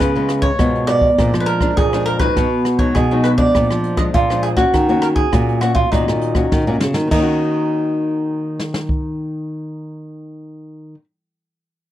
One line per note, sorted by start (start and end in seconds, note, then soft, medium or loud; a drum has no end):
0.00 0.56 C#3 medium
0.00 0.50 C#3 medium
0.00 0.10 B3 medium
0.00 0.10 F4 medium
0.00 0.45 B4 medium
0.00 kick medium
0.00 cross-stick medium
0.00 closed hi-hat medium
0.15 0.55 G#3 medium
0.15 0.55 B3 medium
0.15 0.55 F4 medium
0.15 closed hi-hat soft
0.29 cross-stick medium
0.29 closed hi-hat medium
0.42 0.84 C#5 medium
0.42 kick medium
0.59 1.16 G#2 medium
0.59 1.09 B2 medium
0.59 0.84 G#3 medium
0.59 0.84 B3 medium
0.59 0.84 F4 medium
0.59 kick medium
0.59 cross-stick medium
0.59 closed hi-hat medium
0.75 closed hi-hat soft
0.87 1.13 G#3 medium
0.87 1.14 B3 medium
0.87 1.14 F4 medium
0.87 1.36 D5 medium
0.87 cross-stick medium
0.87 closed hi-hat medium
1.01 kick medium
1.01 closed hi-hat soft
1.18 1.31 A#2 medium
1.18 1.75 A#2 medium
1.18 1.58 F3 medium
1.18 1.58 G#3 medium
1.18 1.59 D4 medium
1.18 kick medium
1.18 cross-stick medium
1.18 closed hi-hat medium
1.34 1.71 F3 medium
1.34 cross-stick medium
1.40 1.48 B4 medium
1.46 1.77 A#4 medium
1.46 closed hi-hat soft
1.61 1.87 F3 medium
1.61 1.87 G#3 medium
1.61 1.87 D4 medium
1.61 kick medium
1.61 cross-stick medium
1.61 closed hi-hat soft
1.77 2.34 F2 medium
1.77 2.28 A#2 medium
1.77 2.05 G#4 medium
1.77 kick medium
1.77 closed hi-hat medium
1.93 2.18 F3 medium
1.93 2.18 G#3 medium
1.93 2.18 D4 medium
1.93 cross-stick medium
2.06 2.19 A#4 medium
2.06 closed hi-hat soft
2.19 2.46 F#3 medium
2.19 2.46 G#3 medium
2.19 2.46 D#4 medium
2.19 2.76 B4 medium
2.19 kick medium
2.19 cross-stick medium
2.36 2.93 B2 medium
2.36 2.87 B2 loud
2.36 kick medium
2.36 cross-stick medium
2.36 closed hi-hat medium
2.65 cross-stick medium
2.65 closed hi-hat soft
2.79 3.05 F#3 medium
2.79 3.05 G#3 medium
2.79 3.05 D#4 medium
2.79 2.94 C#5 medium
2.79 kick medium
2.79 closed hi-hat soft
2.95 3.46 B2 medium
2.95 3.52 B2 soft
2.95 3.26 G#4 medium
2.95 kick medium
2.95 cross-stick medium
2.95 closed hi-hat medium
3.11 3.36 F#3 medium
3.11 3.36 G#3 medium
3.11 3.36 D#4 medium
3.11 closed hi-hat soft
3.24 3.29 B4 medium
3.24 cross-stick medium
3.24 closed hi-hat soft
3.38 3.94 F3 medium
3.38 3.94 G#3 medium
3.38 3.94 D4 medium
3.38 3.94 D5 medium
3.38 kick medium
3.55 3.68 A#2 medium
3.55 4.11 A#2 medium
3.55 kick medium
3.55 cross-stick medium
3.55 closed hi-hat medium
3.71 4.08 F3 medium
3.71 cross-stick medium
3.71 closed hi-hat soft
3.84 closed hi-hat soft
3.97 4.24 F3 medium
3.97 4.24 G#3 medium
3.97 4.24 D4 medium
3.97 4.02 D#5 medium
3.97 kick medium
3.97 cross-stick medium
3.97 closed hi-hat soft
4.14 4.71 F2 medium
4.14 4.65 A#2 medium
4.14 4.42 F4 medium
4.14 kick medium
4.14 closed hi-hat medium
4.30 4.55 F3 medium
4.30 4.55 G#3 medium
4.30 4.55 D4 medium
4.30 cross-stick medium
4.30 closed hi-hat soft
4.43 4.48 G#4 medium
4.43 closed hi-hat soft
4.57 4.88 A#3 medium
4.57 4.88 C#4 medium
4.57 5.04 F#4 medium
4.57 4.89 F#4 medium
4.57 kick medium
4.57 cross-stick medium
4.57 closed hi-hat soft
4.74 5.24 D#3 medium
4.74 5.30 D#3 medium
4.74 kick medium
4.74 cross-stick medium
4.74 closed hi-hat medium
4.89 5.28 A#3 medium
4.89 5.29 C#4 medium
4.89 5.29 F#4 medium
4.89 closed hi-hat soft
5.02 5.07 A#4 medium
5.02 cross-stick medium
5.02 closed hi-hat soft
5.16 5.58 G#4 medium
5.16 kick medium
5.32 5.89 A#2 medium
5.32 5.83 A#2 medium
5.32 5.58 A#3 soft
5.32 5.58 C#4 medium
5.32 5.58 F#4 medium
5.32 kick medium
5.32 cross-stick medium
5.32 closed hi-hat medium
5.49 closed hi-hat soft
5.61 5.87 A#3 medium
5.61 5.87 C#4 medium
5.61 5.74 F#4 medium
5.61 5.87 F#4 medium
5.61 cross-stick medium
5.61 closed hi-hat medium
5.75 5.90 F4 medium
5.75 kick medium
5.75 closed hi-hat soft
5.92 6.05 A#2 medium
5.92 6.49 D#3 medium
5.92 6.32 A#3 medium
5.92 6.33 C#4 medium
5.92 6.77 D#4 medium
5.92 6.33 F#4 medium
5.92 kick medium
5.92 cross-stick medium
5.92 closed hi-hat medium
6.08 6.46 A#2 medium
6.08 cross-stick medium
6.21 closed hi-hat soft
6.35 6.61 A#3 medium
6.35 6.61 C#4 medium
6.35 6.61 F#4 medium
6.35 kick medium
6.35 cross-stick medium
6.35 closed hi-hat soft
6.52 7.08 A#2 medium
6.52 6.64 D#3 medium
6.52 kick medium
6.52 snare soft
6.67 6.80 A#2 medium
6.67 7.09 A#3 medium
6.67 7.09 C#4 medium
6.67 7.09 F#4 medium
6.80 6.94 C#3 medium
6.80 snare medium
6.94 7.08 D#3 medium
6.94 snare medium
7.07 10.96 D#3 medium
7.07 10.94 D#3 medium
7.07 10.94 D#4 medium
7.07 crash medium
7.11 10.99 A#3 medium
7.11 kick medium
7.18 11.02 C#4 medium
7.22 11.04 F#4 medium
8.59 snare soft
8.74 snare medium
8.89 kick medium